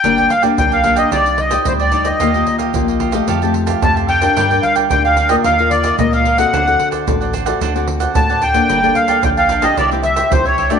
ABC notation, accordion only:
X:1
M:4/4
L:1/16
Q:1/4=111
K:Gm
V:1 name="Accordion"
g2 f2 g f2 e d2 e2 c d2 e- | e3 z8 z a2 g2- | g2 f2 g f2 e f2 d2 e f2 ^f- | ^f3 z8 z a2 g2- |
g2 f2 g f2 e d2 =e2 c ^c2 d |]